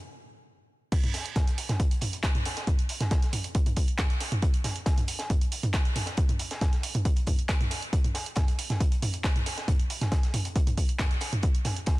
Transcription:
0.92 kick, closed hi-hat, crash
1.04 closed hi-hat, mid tom
1.14 snare, closed hi-hat, open hi-hat
1.26 closed hi-hat
1.36 kick, snare, closed hi-hat, mid tom
1.47 closed hi-hat
1.58 closed hi-hat, open hi-hat
1.69 snare, closed hi-hat, mid tom
1.80 kick, closed hi-hat
1.91 closed hi-hat
2.01 closed hi-hat, mid tom, open hi-hat
2.13 closed hi-hat
2.23 kick, snare, clap, closed hi-hat
2.35 closed hi-hat, mid tom
2.45 snare, closed hi-hat, open hi-hat
2.57 snare, closed hi-hat
2.67 kick, closed hi-hat, mid tom
2.79 closed hi-hat
2.89 closed hi-hat, open hi-hat
3.01 snare, closed hi-hat, mid tom
3.11 kick, snare, closed hi-hat
3.22 snare, closed hi-hat
3.33 closed hi-hat, mid tom, open hi-hat
3.44 closed hi-hat
3.55 kick, closed hi-hat
3.66 closed hi-hat, mid tom
3.76 kick, closed hi-hat, open hi-hat
3.88 closed hi-hat
3.99 kick, snare, clap, closed hi-hat, mid tom
4.10 closed hi-hat
4.20 snare, closed hi-hat, open hi-hat
4.32 closed hi-hat, mid tom
4.42 kick, closed hi-hat
4.54 closed hi-hat
4.64 snare, closed hi-hat, mid tom, open hi-hat
4.76 closed hi-hat
4.86 kick, snare, closed hi-hat
4.97 closed hi-hat, mid tom
5.08 closed hi-hat, open hi-hat
5.19 snare, closed hi-hat
5.30 kick, closed hi-hat, mid tom
5.41 closed hi-hat
5.52 closed hi-hat, open hi-hat
5.63 closed hi-hat, mid tom
5.74 kick, snare, clap, closed hi-hat
5.85 closed hi-hat
5.96 snare, closed hi-hat, mid tom, open hi-hat
6.06 snare, closed hi-hat
6.17 kick, closed hi-hat
6.29 closed hi-hat, mid tom
6.39 closed hi-hat, open hi-hat
6.51 snare, closed hi-hat
6.61 kick, snare, closed hi-hat, mid tom
6.73 snare, closed hi-hat
6.83 closed hi-hat, open hi-hat
6.94 closed hi-hat, mid tom
7.05 kick, closed hi-hat
7.16 closed hi-hat
7.27 kick, closed hi-hat, mid tom, open hi-hat
7.39 closed hi-hat
7.49 kick, snare, clap, closed hi-hat
7.61 closed hi-hat, mid tom
7.71 snare, closed hi-hat, open hi-hat
7.82 closed hi-hat
7.93 kick, closed hi-hat
8.04 closed hi-hat, mid tom
8.15 snare, closed hi-hat, open hi-hat
8.26 closed hi-hat
8.36 kick, snare, closed hi-hat, mid tom
8.48 closed hi-hat
8.59 closed hi-hat, open hi-hat
8.70 snare, closed hi-hat, mid tom
8.80 kick, closed hi-hat
8.92 closed hi-hat
9.02 closed hi-hat, mid tom, open hi-hat
9.13 closed hi-hat
9.24 kick, snare, clap, closed hi-hat
9.36 closed hi-hat, mid tom
9.46 snare, closed hi-hat, open hi-hat
9.58 snare, closed hi-hat
9.68 kick, closed hi-hat, mid tom
9.79 closed hi-hat
9.90 closed hi-hat, open hi-hat
10.01 snare, closed hi-hat, mid tom
10.12 kick, snare, closed hi-hat
10.23 snare, closed hi-hat
10.34 closed hi-hat, mid tom, open hi-hat
10.45 closed hi-hat
10.56 kick, closed hi-hat
10.67 closed hi-hat, mid tom
10.77 kick, closed hi-hat, open hi-hat
10.89 closed hi-hat
10.99 kick, snare, clap, closed hi-hat, mid tom
11.11 closed hi-hat
11.21 snare, closed hi-hat, open hi-hat
11.33 closed hi-hat, mid tom
11.43 kick, closed hi-hat
11.55 closed hi-hat
11.65 snare, closed hi-hat, mid tom, open hi-hat
11.76 closed hi-hat
11.86 kick, snare, closed hi-hat

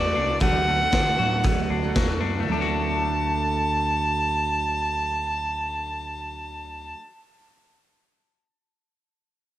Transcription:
Already playing: E2 A3 D4 F#4 D5
0.02 A3 D4 F#4
0.15 C2 D4
0.40 D2 D3 F#3 A3 D4 F#4 F#5, kick, closed hi-hat
0.68 A3
0.79 A3 D4 F#4
0.92 D3 D4, kick, snare, closed hi-hat
1.18 A2 F#3 A3 D4 F#4
1.44 D3 F#3 A3 D4 F#4, kick, closed hi-hat
1.70 D2 D4
1.82 D3 F#3 A3 D4 F#4
1.96 F#4, kick, snare, closed hi-hat
2.08 A3 D4 F#4
2.21 F#2 D4
2.40 D3 A3
2.48 D2 F#3 A5
2.52 A3 D4
2.57 D4
2.61 F#4

